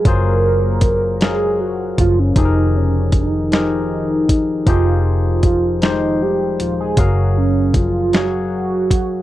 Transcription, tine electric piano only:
\new Staff \with { instrumentName = "Tine electric piano" } { \time 6/8 \key f \phrygian \tempo 4. = 52 <ges f' aes' c''>4. <ges aes' bes' f''>4. | <f ees' g' aes' a' bes'>4. <f ees' g' aes' bes'>4. | <f ees' g' aes' c''>4. <f aes ees' g' c''>4. | <ges aes' bes' f''>4. <ges aes' des'' f''>4. | }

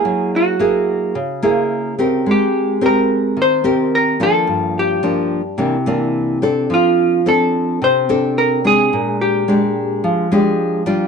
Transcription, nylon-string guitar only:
\new Staff \with { instrumentName = "Nylon-string guitar" } { \time 4/4 \key aes \lydian \tempo 4 = 108 << { <bes e' aes'>4 <ais e' gis'>4 r8 <ais e' gis'>4 <c' g' ais'>8~ | <c' g' ais'>4 <c' g' bes'>4. <c' g' bes'>4 <f bes d'>8~ | <f bes d'>4 <f bes d'>8 r8 <e bes d'>8 <e bes d'>4 <c' d' a'>8~ | <c' d' a'>4 <c' d' a'>4. <c' d' a'>4 <aes d'>8~ |
<aes d'>4 <aes d' g'>4. <aes d' g'>4 <g d' f'>8 | } \\ { fis2 cis2 | aes2 ees2 | g,2 c2 | f2 c2 |
bes,2 f2 | } >> }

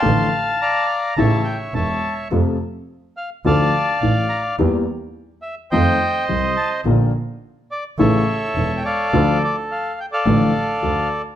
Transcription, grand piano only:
\new Staff \with { instrumentName = "Grand piano" } { \clef bass \time 4/4 \key d \minor \tempo 4 = 106 <a,, a, d f a f'>8 r4. <a,, a, cis e a e'>8 r8 <e,, e,>8 r8 | <f, c f a f'>8 r4. <d, d f a f'>8 r8 <a,, a,>8 r8 | <e, e g bes g'>8 r4. <f, ees f a c' f'>8 r8 <c, c>8 r8 | <bes,, bes, d f bes f'>8 r4. <a,, a, cis e a e'>8 r8 <e,, e,>8 r8 |
<d, d f a f'>8 r4. <a,, a, d f a f'>8 r8 <d, d>8 r8 | }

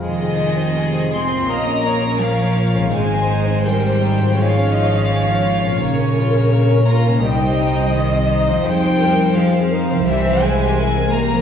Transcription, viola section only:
\new Staff \with { instrumentName = "Viola section" } { \time 4/4 \key f \minor \tempo 4 = 84 r2 ees''8 des''4. | c''4 bes'8 c''8 des''8 ees''8 des''8 des''8 | bes'2 ees''2 | c''8 bes'8 aes'8 bes'8 c''4 bes'4 | }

